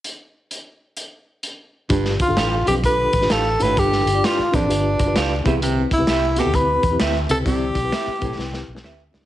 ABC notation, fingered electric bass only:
X:1
M:4/4
L:1/16
Q:"Swing" 1/4=130
K:Gmix
V:1 name="Fingered electric bass" clef=bass
z16 | G,,,2 z G,,, A,,,2 B,,,4 A,,,2 A,,,2 _A,,,2 | G,,,2 G,,,2 z2 A,,,2 G,,,2 G,,,2 ^C,,2 =C,,2- | C,,2 z C,, C,,3 D,,3 E,,2 D,,2 ^C,,2 |
C,,2 B,,,2 z2 B,,,2 C,,2 B,,,2 z2 ^C,,2 |]